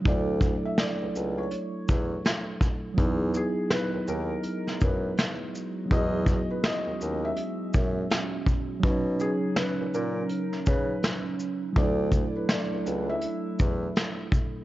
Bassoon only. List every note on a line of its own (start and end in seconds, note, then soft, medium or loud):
0.06 0.56 D2 loud
1.01 1.07 C#2 soft
1.16 1.46 C#2 medium
1.89 2.20 E2 medium
2.98 3.48 E2 loud
3.94 3.99 D#2 soft
4.08 4.39 D#2 medium
4.82 5.12 F#2 medium
5.91 6.41 E2 loud
6.87 6.92 D#2 soft
7.01 7.32 D#2 medium
7.75 8.05 F#2 medium
8.84 9.33 B2 loud
9.80 9.85 A#2 soft
9.94 10.25 A#2 medium
10.67 10.98 C#3 medium
11.76 12.26 D2 loud
12.72 12.78 C#2 soft
12.86 13.17 C#2 medium
13.60 13.91 E2 medium